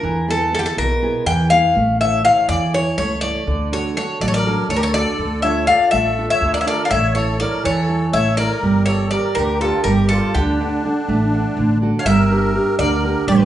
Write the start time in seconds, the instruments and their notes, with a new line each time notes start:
Already playing: bouzouki A#4
0.03 upright bass E2, nylon-string guitar E3
0.28 nylon-string guitar B3 E4 G#4, bouzouki A4
0.53 nylon-string guitar B3 E4 G#4, bouzouki A4
0.59 bouzouki G4
0.66 bouzouki A4
0.77 upright bass B1, nylon-string guitar B2, bouzouki A#4
1.02 nylon-string guitar B3 E4 G#4
1.26 upright bass E2, nylon-string guitar E3, bouzouki G5
1.50 nylon-string guitar B3 E4 G#4, bouzouki F5
1.75 upright bass A1, nylon-string guitar A3
2.00 nylon-string guitar E4 A4 C#5, bouzouki E5
2.24 nylon-string guitar E4 A4 C#5, bouzouki F5
2.48 upright bass E2, nylon-string guitar E3, bouzouki D5
2.74 nylon-string guitar E4 A4 C#5, bouzouki C#5
2.98 upright bass C#2, nylon-string guitar A3, bouzouki C#5
3.21 nylon-string guitar E4 A4 C#5, bouzouki D5
3.47 upright bass D2, nylon-string guitar D3
3.72 nylon-string guitar D4 F#4 A4, bouzouki C#5
3.97 nylon-string guitar D4 F#4 A4, bouzouki C#5
4.21 upright bass A1, nylon-string guitar F#3, accordion A4, bouzouki D5
4.28 accordion A4, bouzouki C#5
4.34 accordion A#4, bouzouki D5
4.46 nylon-string guitar D4 F#4 A4
4.69 upright bass D2, nylon-string guitar D3, accordion A4, bouzouki C#5
4.75 accordion G4, bouzouki A#4
4.81 accordion A4, bouzouki C#5
4.94 nylon-string guitar D4 F#4 A4, accordion A4, bouzouki D5
5.19 upright bass D2, nylon-string guitar D3
5.42 nylon-string guitar D4 F4 A4, accordion C#5, bouzouki E5
5.67 nylon-string guitar D4 F4 A4, accordion D5, bouzouki F5
5.91 upright bass A1, nylon-string guitar A3, accordion A4, bouzouki E5
6.18 nylon-string guitar D4 F4 A4
6.30 accordion C#5, bouzouki E5
6.41 upright bass D2, nylon-string guitar D3
6.54 accordion A#4, bouzouki D5
6.61 accordion C#5, bouzouki E5
6.66 nylon-string guitar D4 F4 A4, accordion A#4, bouzouki D5
6.85 accordion D5, bouzouki F5
6.90 upright bass A1, nylon-string guitar A3, accordion C#5, bouzouki E5
7.15 nylon-string guitar E4 A4 C#5, accordion A4, bouzouki C#5
7.40 nylon-string guitar E4 A4 C#5, accordion A#4, bouzouki D5
7.64 upright bass E2, nylon-string guitar E3, accordion A4, bouzouki C#5
7.88 nylon-string guitar E4 A4 C#5
8.13 upright bass A1, nylon-string guitar A3, accordion C#5, bouzouki E5
8.37 nylon-string guitar E4 A4 C#5, accordion A#4, bouzouki D5
8.63 upright bass G1, nylon-string guitar G3
8.86 nylon-string guitar G4 A#4 D5, accordion A4, bouzouki C#5
9.11 nylon-string guitar G4 A#4 D5, accordion A#4, bouzouki D5
9.35 upright bass D2, nylon-string guitar D3, accordion G4, bouzouki A#4
9.60 accordion F4, nylon-string guitar G4 A#4 D5, bouzouki A4
9.84 upright bass G1, nylon-string guitar G3, accordion G4, bouzouki A#4
10.09 accordion F4, nylon-string guitar G4 A#4 D5, bouzouki A4
10.34 upright bass D2, nylon-string guitar D3, accordion D4, bouzouki G4
10.60 nylon-string guitar D4 A4 F#5
10.85 nylon-string guitar D4 A4 F#5
11.08 upright bass A1, nylon-string guitar A3
11.33 nylon-string guitar D4 A4 F#5
11.57 upright bass A1, nylon-string guitar D3
11.82 nylon-string guitar D4 F#4 A4
11.99 accordion C#5, bouzouki F5
12.05 upright bass G1, nylon-string guitar G3, accordion A#4, bouzouki E5
12.31 nylon-string guitar D4 G4 A#4
12.55 nylon-string guitar D4 G4 A#4
12.79 upright bass D2, nylon-string guitar D3, accordion A#4, bouzouki D5
13.04 nylon-string guitar D4 G4 A#4
13.27 upright bass A1, nylon-string guitar G3, accordion G4, bouzouki A#4